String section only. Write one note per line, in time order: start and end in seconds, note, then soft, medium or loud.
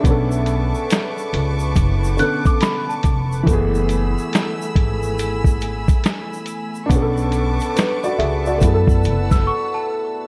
0.05 3.44 B4 medium
0.05 3.44 A5 medium
0.05 3.44 C#6 medium
0.05 3.44 D6 medium
3.48 6.87 A3 medium
3.48 6.87 G#5 medium
3.48 6.87 B5 medium
3.48 6.87 E6 medium
6.90 10.27 B4 medium
6.90 10.27 A5 medium
6.90 8.60 C#6 medium
6.90 8.60 D6 medium
8.62 10.27 F#5 medium
8.62 10.27 E6 medium